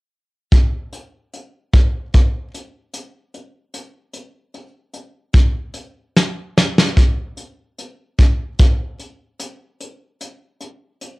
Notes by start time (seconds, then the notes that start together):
0.52 kick, closed hi-hat
0.93 closed hi-hat
1.34 closed hi-hat
1.73 kick, closed hi-hat
2.14 kick, closed hi-hat
2.54 closed hi-hat
2.94 closed hi-hat
3.34 closed hi-hat
3.74 closed hi-hat
4.13 closed hi-hat
4.54 closed hi-hat
4.93 closed hi-hat
5.33 kick, closed hi-hat
5.74 closed hi-hat
6.16 snare
6.57 snare
6.78 snare
6.97 kick, closed hi-hat
7.37 closed hi-hat
7.79 closed hi-hat
8.19 kick, closed hi-hat
8.59 kick, closed hi-hat
9.00 closed hi-hat
9.40 closed hi-hat
9.80 closed hi-hat
10.21 closed hi-hat
10.61 closed hi-hat
11.01 closed hi-hat